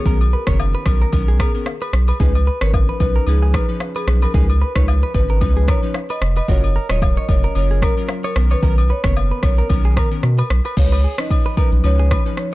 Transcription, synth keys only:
0.05 0.23 D#3 medium
0.05 0.23 B3 medium
0.05 0.23 C#4 medium
0.05 0.23 A#4 loud
0.47 0.83 D#3 medium
0.47 0.83 B3 medium
0.47 0.83 C#4 medium
0.47 0.83 A#4 medium
0.86 1.11 D#3 medium
0.86 1.11 B3 medium
0.86 1.11 C#4 medium
0.86 1.11 A#4 medium
1.12 1.51 D#3 medium
1.12 1.51 B3 medium
1.12 1.51 C#4 medium
1.12 1.51 A#4 loud
1.54 1.69 D#3 medium
1.54 1.69 B3 medium
1.54 1.70 C#4 medium
1.54 1.70 A#4 medium
2.20 2.37 F3 medium
2.20 2.37 C#4 medium
2.20 2.37 D#4 medium
2.20 2.37 B4 loud
2.61 2.97 F3 medium
2.61 2.97 C#4 medium
2.61 2.97 D#4 medium
2.61 2.98 B4 medium
3.00 3.25 F3 medium
3.00 3.25 C#4 medium
3.00 3.25 D#4 medium
3.00 3.25 B4 medium
3.27 3.65 F3 medium
3.27 3.65 C#4 medium
3.27 3.65 D#4 medium
3.27 3.65 B4 loud
3.68 4.04 F3 medium
3.68 4.04 C#4 medium
3.68 4.05 D#4 medium
3.68 4.05 B4 medium
4.07 4.32 F3 medium
4.07 4.32 C#4 medium
4.07 4.32 D#4 medium
4.07 4.32 B4 medium
4.34 4.51 F3 medium
4.34 4.51 C#4 medium
4.34 4.51 D#4 medium
4.34 4.52 B4 loud
4.75 5.11 F3 medium
4.75 5.12 C#4 medium
4.75 5.12 D#4 medium
4.75 5.12 B4 medium
5.14 5.39 F3 medium
5.14 5.39 C#4 medium
5.14 5.39 D#4 medium
5.14 5.40 B4 medium
5.41 5.79 F3 medium
5.41 5.79 C#4 medium
5.41 5.79 D#4 medium
5.41 5.79 B4 loud
5.82 5.98 F3 medium
5.82 5.98 C#4 medium
5.82 5.98 D#4 medium
5.82 5.98 B4 medium
6.48 6.66 F#3 medium
6.48 6.66 C#4 medium
6.48 6.66 F4 medium
6.48 6.66 A#4 loud
6.90 7.26 F#3 medium
6.90 7.26 C#4 medium
6.90 7.26 F4 medium
6.90 7.26 A#4 medium
7.28 7.53 F#3 medium
7.28 7.54 C#4 medium
7.28 7.54 F4 medium
7.28 7.54 A#4 medium
7.55 7.93 F#3 medium
7.55 7.93 C#4 medium
7.55 7.94 F4 medium
7.55 7.94 A#4 loud
7.97 8.33 F#3 medium
7.97 8.33 C#4 medium
7.97 8.33 F4 medium
7.97 8.33 A#4 medium
8.36 8.61 D#3 medium
8.36 8.61 B3 medium
8.36 8.61 C#4 medium
8.36 8.61 A#4 medium
8.62 8.80 D#3 medium
8.62 8.80 B3 medium
8.62 8.80 C#4 medium
8.62 8.80 A#4 loud
9.04 9.40 D#3 medium
9.04 9.40 B3 medium
9.04 9.40 C#4 medium
9.04 9.40 A#4 medium
9.43 9.68 D#3 medium
9.43 9.68 B3 medium
9.43 9.68 C#4 medium
9.43 9.68 A#4 medium
9.70 10.08 D#3 medium
9.70 10.08 B3 medium
9.70 10.08 C#4 medium
9.70 10.08 A#4 loud
10.11 10.26 D#3 medium
10.11 10.26 B3 medium
10.11 10.26 C#4 medium
10.11 10.27 A#4 medium
10.77 10.94 F3 medium
10.77 10.94 C#4 medium
10.77 10.94 D#4 medium
10.77 10.94 B4 loud
11.18 11.54 F3 medium
11.18 11.54 C#4 medium
11.18 11.54 D#4 medium
11.18 11.55 B4 medium
11.57 11.82 F3 medium
11.57 11.82 C#4 medium
11.57 11.82 D#4 medium
11.57 11.82 B4 medium
11.84 12.22 F3 medium
11.84 12.22 C#4 medium
11.84 12.22 D#4 medium
11.84 12.22 B4 loud
12.25 12.54 F3 medium
12.25 12.54 C#4 medium
12.25 12.54 D#4 medium
12.25 12.54 B4 medium

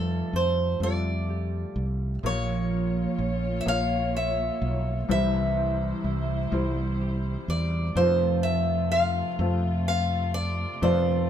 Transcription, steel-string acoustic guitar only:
0.00 0.36 A4 medium
0.36 0.79 C5 medium
0.83 1.85 D5 medium
2.26 3.60 C#5 medium
3.61 3.67 E5 medium
3.68 4.12 F5 medium
4.17 5.10 E5 medium
5.11 6.97 E5 medium
7.50 7.98 D5 medium
7.97 8.46 C5 medium
8.43 8.91 E5 medium
8.92 9.87 F5 medium
9.88 10.34 F5 medium
10.34 10.82 D5 medium
10.83 11.30 C5 medium

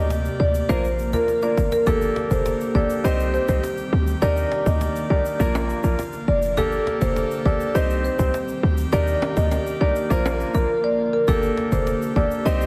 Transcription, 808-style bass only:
0.00 0.29 D2 loud
0.40 0.62 D2 medium
0.69 1.14 A#1 loud
1.57 1.69 G1 medium
1.87 2.09 G1 loud
2.31 2.53 F1 medium
2.75 2.86 G1 medium
3.05 3.38 C2 loud
3.49 3.60 C2 medium
3.93 4.15 D2 loud
4.22 4.45 D#2 loud
4.66 4.89 D2 loud
5.10 5.22 C2 medium
5.40 5.74 A#1 loud
5.84 5.95 A#1 loud
6.28 6.59 F1 medium
6.57 6.80 G1 loud
7.02 7.24 F1 medium
7.46 7.57 G1 medium
7.75 8.09 C2 loud
8.19 8.30 C2 medium
8.63 8.86 D2 loud
8.93 9.15 D#2 loud
9.37 9.59 D2 loud
9.81 9.92 C2 medium
10.10 10.44 A#1 loud
10.54 10.66 A#1 medium
11.28 11.50 G1 loud
11.72 11.95 F1 medium
12.16 12.27 G1 medium
12.46 12.66 C2 loud

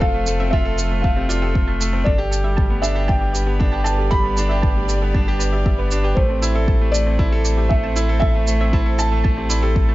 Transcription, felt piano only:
0.01 0.54 F5 medium
0.51 1.05 E5 medium
1.02 1.76 F5 medium
2.04 2.78 D5 medium
2.82 3.09 E5 medium
3.08 3.88 G5 loud
3.84 4.12 A5 medium
4.11 5.61 B5 loud
6.15 6.95 C5 medium
6.92 7.72 D5 loud
7.69 8.18 E5 medium
8.20 9.00 E5 loud
8.99 9.95 A5 loud

